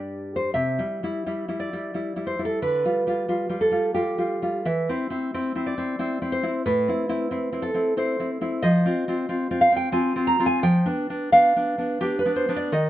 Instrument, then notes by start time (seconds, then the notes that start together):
nylon-string guitar
Already playing: G2 G3 D4 G4
0.36 C5
0.54 C3 E5
0.79 G3 E4
1.03 G3 E4
1.26 G3 E4
1.48 G3 E4
1.60 D5
1.73 G3 E4
1.94 G3 E4
2.16 G3 E4
2.27 C5
2.39 G3 E4
2.45 A4
2.62 D3 B4
2.85 G3 F4
3.07 G3 F4
3.28 G3 F4
3.49 G3 F4
3.61 A4
3.71 G3 F4
3.94 G3 F4 G4
4.18 G3 F4
4.42 G3 F4
4.65 E3 E5
4.89 C4 E4
5.10 C4 E4
5.34 C4 E4
5.55 C4 E4
5.66 D5
5.78 C4 E4
5.99 C4 E4
6.22 C4 E4
6.32 C5
6.43 C4 E4
6.66 A2 B4
6.88 C4 E4
7.09 C4 E4
7.31 C4 E4
7.52 C4 E4
7.62 A4
7.74 C4 E4
7.97 C4 E4 C5
8.20 C4 E4
8.41 C4 E4
8.62 F3 D#5
8.86 C4 F4
9.08 C4 F4
9.29 C4 F4
9.51 C4 F4
9.61 F5
9.72 C4 F4
9.76 G5
9.92 C4 F4 G#5
10.16 C4 F4
10.27 A#5
10.39 C4 F4
10.46 G#5
10.63 F3 G5
10.86 B3 D4
11.10 B3 D4
11.32 B3 D4 F5
11.56 B3 D4
11.78 B3 D4
12.01 B3 D4 G4
12.19 B4
12.25 B3 D4
12.36 C5
12.49 B3 D4
12.56 D5
12.72 D#3 D#5